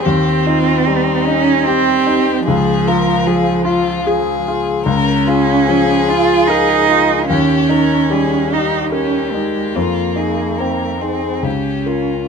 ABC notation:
X:1
M:3/4
L:1/8
Q:1/4=74
K:Dblyd
V:1 name="Violin"
G F E2 G2 | A B A F A2 | [K:Bbdor] B A4- A | G B A G G2 |
F A B A G F |]
V:2 name="Grand piano"
E,, E G, E G E | D,, F F, F A F | [K:Bbdor] D,, F F, F B F | E,, E G, E B E |
F,, E C E D,, [FB] |]
V:3 name="Cello"
C3 D C2 | F,4- F, z | [K:Bbdor] D3 F E2 | D3 E D A, |
B,3 C D2 |]